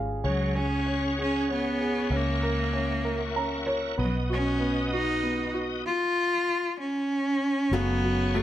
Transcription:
0.00 0.21 G#1 medium
0.00 0.24 C#4 medium
0.00 0.26 G#4 soft
0.00 0.23 F5 medium
0.00 0.26 G#5 medium
0.24 2.07 C#2 medium
0.24 0.57 F#3 medium
0.24 0.85 C#4 medium
0.24 2.10 G#4 medium
0.24 2.10 C#5 medium
0.24 5.82 F#5 soft
0.24 3.95 C#6 medium
0.55 1.18 C#4 medium
0.55 1.17 G#4 soft
0.86 1.48 C#4 soft
1.19 1.49 C#4 medium
1.19 1.80 G#4 medium
1.49 2.10 C#4 soft
1.53 2.18 B3 medium
1.81 2.11 G#4 soft
2.10 3.94 C#2 medium
2.10 2.72 C#4 medium
2.10 3.96 A#4 medium
2.10 3.96 E5 medium
2.17 3.70 A#3 medium
2.43 3.03 A#4 medium
2.73 3.34 C#4 soft
3.04 3.64 A#4 medium
3.36 3.97 C#4 soft
3.36 3.65 A#5 medium
3.66 3.97 A#4 soft
3.66 3.96 C#5 medium
3.98 5.82 B1 medium
3.98 4.58 B3 medium
3.98 5.84 B4 medium
3.98 5.84 D#5 medium
3.98 5.84 D#6 medium
4.03 4.16 F#3 medium
4.30 4.90 C#4 medium
4.30 4.91 F#4 soft
4.60 5.22 B3 soft
4.93 5.51 D#4 medium
4.93 5.52 F#4 medium
5.23 5.84 B3 soft
5.53 5.84 F#4 medium
5.86 6.76 F4 loud
6.80 7.75 C#4 loud
7.71 8.43 F#1 loud
7.71 8.35 F#2 medium
7.71 8.35 C#3 medium
7.71 8.02 F#3 medium
7.71 8.33 F#3 medium
7.71 8.34 A3 medium
7.71 8.36 B3 loud
7.71 8.36 C#4 medium
7.71 8.36 G#4 medium
7.71 8.43 F#5 medium
7.71 8.43 G#5 medium
7.71 8.43 C#6 medium
8.04 8.33 F#3 medium
8.34 8.43 F#3 medium
8.34 8.43 A3 medium
8.34 8.43 C#4 medium
8.34 8.43 G#4 medium

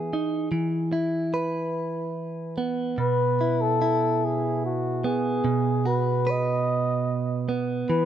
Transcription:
0.00 0.51 E3 medium
0.00 0.13 B3 soft
0.00 0.92 E4 soft
0.00 1.33 G#4 medium
0.13 0.48 D#4 soft
0.52 2.94 E3 medium
0.93 2.94 E4 soft
1.34 4.84 B4 soft
2.58 5.04 B3 soft
2.98 5.40 B2 soft
2.98 3.63 B4 medium
3.41 3.80 E4 soft
3.61 4.26 A4 medium
3.82 5.41 E4 soft
4.24 4.64 G#4 medium
4.65 5.07 F#4 medium
5.04 7.48 B3 soft
5.04 5.88 G#4 medium
5.44 7.84 B2 medium
5.85 7.84 F#4 soft
5.85 6.32 B4 medium
6.27 8.05 B4 medium
6.27 7.50 D#5 medium
7.49 8.05 B3 soft
7.89 8.05 E3 medium
7.89 8.05 B4 medium

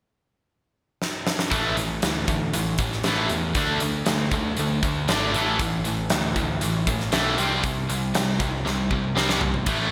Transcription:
1.02 snare medium
1.27 snare medium
1.39 snare medium
1.51 2.00 A1 medium
1.51 1.75 A2 medium
1.51 1.75 E3 loud
1.51 1.75 A3 loud
1.51 kick loud
1.51 closed hi-hat medium
1.77 2.00 A2 medium
1.77 2.00 E3 medium
1.77 closed hi-hat medium
2.02 2.27 D2 medium
2.02 2.25 A2 medium
2.02 2.25 E3 medium
2.02 snare loud
2.02 closed hi-hat medium
2.28 2.52 D2 medium
2.28 2.51 A2 medium
2.28 2.51 E3 medium
2.28 kick medium
2.28 closed hi-hat medium
2.53 2.78 A1 medium
2.53 2.76 A2 medium
2.53 2.77 E3 medium
2.53 closed hi-hat medium
2.78 3.03 A1 medium
2.78 3.02 A2 medium
2.78 3.02 E3 medium
2.78 kick medium
2.78 closed hi-hat medium
2.92 snare soft
3.04 3.29 A1 medium
3.04 3.28 A2 medium
3.04 3.29 E3 loud
3.04 3.29 A3 medium
3.04 snare loud
3.04 closed hi-hat medium
3.29 3.54 E2 medium
3.29 3.53 A2 medium
3.29 3.54 E3 medium
3.29 closed hi-hat medium
3.55 3.80 D2 medium
3.55 3.80 D3 medium
3.55 3.80 A3 loud
3.55 3.80 D4 loud
3.55 kick loud
3.55 closed hi-hat medium
3.80 4.06 D2 medium
3.80 4.04 D3 medium
3.80 4.04 A3 medium
3.80 closed hi-hat medium
4.06 4.31 D2 medium
4.06 4.30 D3 medium
4.06 4.30 A3 medium
4.06 snare loud
4.06 closed hi-hat medium
4.31 4.56 D2 medium
4.31 4.56 D3 medium
4.31 4.56 A3 medium
4.31 kick medium
4.31 closed hi-hat medium
4.57 4.82 D2 medium
4.57 4.81 D3 medium
4.57 4.81 A3 medium
4.57 closed hi-hat medium
4.83 5.07 D2 medium
4.83 5.06 D3 medium
4.83 5.06 A3 medium
4.83 kick medium
4.83 closed hi-hat medium
5.08 5.33 G#1 medium
5.08 5.33 D3 medium
5.08 5.33 A3 medium
5.08 5.34 D4 loud
5.08 snare loud
5.08 closed hi-hat medium
5.34 5.58 A1 medium
5.34 5.59 A2 medium
5.34 5.59 E3 medium
5.34 5.60 A3 loud
5.34 closed hi-hat medium
5.60 6.09 A1 medium
5.60 5.84 A2 medium
5.60 5.84 E3 medium
5.60 kick loud
5.60 closed hi-hat medium
5.85 6.09 A2 medium
5.85 6.09 E3 medium
5.85 closed hi-hat medium
6.10 6.36 D2 loud
6.10 6.34 A2 medium
6.10 6.34 E3 medium
6.10 snare loud
6.10 closed hi-hat medium
6.36 6.61 D2 medium
6.36 6.59 A2 medium
6.36 6.60 E3 medium
6.36 kick medium
6.36 closed hi-hat medium
6.61 6.87 A1 medium
6.61 6.85 A2 medium
6.61 6.85 E3 medium
6.61 closed hi-hat medium
6.87 7.12 A1 medium
6.87 7.10 A2 medium
6.87 7.10 E3 medium
6.87 kick medium
6.87 closed hi-hat medium
7.00 snare soft
7.12 7.37 B1 loud
7.12 7.37 A2 medium
7.12 7.37 E3 loud
7.12 7.37 A3 medium
7.12 snare loud
7.12 closed hi-hat medium
7.38 7.63 C2 medium
7.38 7.62 C3 medium
7.38 7.63 G3 loud
7.38 7.63 C4 medium
7.38 closed hi-hat medium
7.63 7.88 C2 loud
7.63 7.87 C3 medium
7.63 7.87 G3 medium
7.63 kick medium
7.63 closed hi-hat medium
7.89 8.14 C2 medium
7.89 8.12 C3 medium
7.89 8.13 G3 medium
7.89 closed hi-hat medium
8.15 8.39 C2 medium
8.15 8.38 C3 medium
8.15 8.38 G3 medium
8.15 snare loud
8.15 closed hi-hat medium
8.40 8.65 C2 medium
8.40 8.63 C3 medium
8.40 8.64 G3 medium
8.40 kick medium
8.40 closed hi-hat medium
8.65 8.91 C2 medium
8.65 8.88 C3 medium
8.65 8.89 G3 medium
8.65 snare medium
8.91 9.16 C2 medium
8.91 9.14 C3 medium
8.91 9.14 G3 medium
8.91 kick medium
9.16 9.41 C2 medium
9.16 9.40 C3 medium
9.16 9.41 G3 medium
9.16 9.41 C4 loud
9.16 snare medium
9.29 snare medium
9.41 9.67 C2 medium
9.41 9.65 C3 medium
9.41 9.65 G3 medium
9.41 floor tom loud
9.54 floor tom medium
9.66 9.91 A1 medium
9.66 9.91 A2 medium
9.66 9.91 E3 medium
9.66 9.91 A3 medium
9.66 kick loud
9.66 closed hi-hat medium
9.66 crash medium

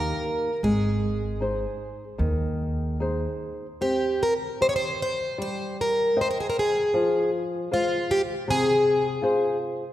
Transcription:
0.00 0.10 D#2 medium
0.00 0.49 A#3 soft
0.00 0.49 D#4 soft
0.00 0.49 G4 soft
0.00 0.64 A#4 medium
0.63 1.64 G#1 medium
0.63 1.39 G#3 medium
0.63 2.95 G#4 medium
1.40 2.03 D#4 soft
1.40 2.03 G#4 soft
1.40 2.04 C5 soft
2.18 3.24 D#2 medium
2.18 2.96 D#3 medium
3.00 3.65 D#4 soft
3.00 3.65 G#4 soft
3.00 3.66 C5 soft
3.81 4.57 C4 medium
3.81 4.22 G4 medium
4.23 4.33 A#4 medium
4.61 5.23 G4 soft
4.61 5.23 C5 soft
4.61 4.68 C5 medium
4.61 5.23 D#5 soft
4.69 4.75 C#5 medium
4.76 5.00 C5 medium
5.02 5.37 C5 medium
5.38 6.14 G3 medium
5.38 5.76 C5 medium
5.81 6.18 A#4 medium
6.16 6.78 C5 soft
6.16 6.79 D#5 medium
6.16 6.78 G5 soft
6.21 6.29 C5 medium
6.31 6.38 A#4 medium
6.40 6.48 G#4 medium
6.50 6.57 A#4 medium
6.59 7.30 G#4 medium
6.94 7.68 F3 medium
7.71 8.32 G#3 soft
7.71 8.32 F4 soft
7.71 8.11 F4 medium
7.71 8.32 C5 soft
8.11 8.21 G4 medium
8.48 9.20 C3 medium
8.48 9.57 G#4 loud
9.22 9.82 F4 soft
9.22 9.83 G#4 soft
9.22 9.83 C5 medium

